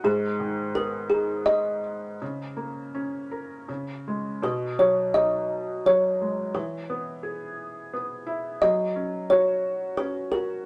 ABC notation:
X:1
M:3/4
L:1/8
Q:1/4=85
K:Blyd
V:1 name="Kalimba"
G2 A G d2- | d4 z2 | B c d2 c2 | B2 z4 |
d2 c2 B A |]
V:2 name="Felt piano"
G,, D, B, D3 | C, A, C A C, G, | B,, F, D2 F, G, | =E, B, G2 B, =E |
F, C F2 C F |]